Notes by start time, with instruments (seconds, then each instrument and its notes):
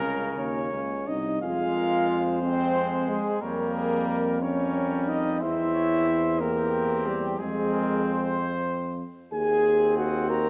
Already playing: trombone C#3, french horn C#4, trumpet C#4 A#4
0.02 tuba C#2
0.37 tuba D#2, french horn C#4, trumpet C#5
0.72 tuba C#2
1.07 tuba C2, french horn D#4, trumpet D#5
1.42 tuba F2, trombone G#3, french horn F4, trumpet G#4 F5
1.76 trumpet A#4
2.09 trumpet C5
2.42 trombone G#3, french horn C4, trumpet C5
3.09 french horn G#3, trumpet G#4
3.42 tuba F2, trombone G3, french horn A#3, trumpet A#4 C#5
3.75 trumpet G#4
4.07 trumpet A#4
4.41 trombone G3, french horn C#4, trumpet A#4 C#5
5.08 french horn D#4, trumpet D#5
5.40 tuba E2, trombone C4, french horn E4, trumpet C5 E5
5.74 trumpet C#5
6.09 trumpet C5
6.40 french horn A#3, trombone C4, trumpet G4 A#4
7.06 french horn G3, trumpet G4
7.39 tuba F2, french horn G#3, trombone C4, trumpet G#4
7.73 trumpet A#4
8.04 trumpet C5
9.32 tuba D#2, trombone C4, trumpet G#4 G#5, french horn G#4
9.97 french horn F#4, trumpet F#5
10.28 trumpet F#4 A#5, french horn A#4